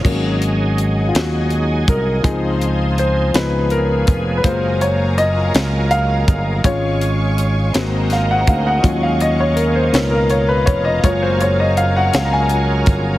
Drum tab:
CC |x-----|------|------|------|
HH |-xxxxx|xxxxxx|xxxxxx|xxxxxx|
SD |---o--|---o--|---o--|---oo-|
BD |o----o|o----o|o----o|o----o|

CC |------|------|
HH |xxxxxx|xxxxxx|
SD |---o--|---o--|
BD |o----o|o----o|